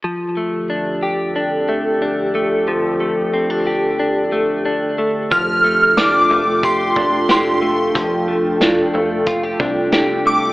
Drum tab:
HH |--------|--------|x-x-x-x-|x-x-x-x-|
SD |--------|--------|--o---o-|--o---o-|
BD |--------|--------|o---oo--|o---oo--|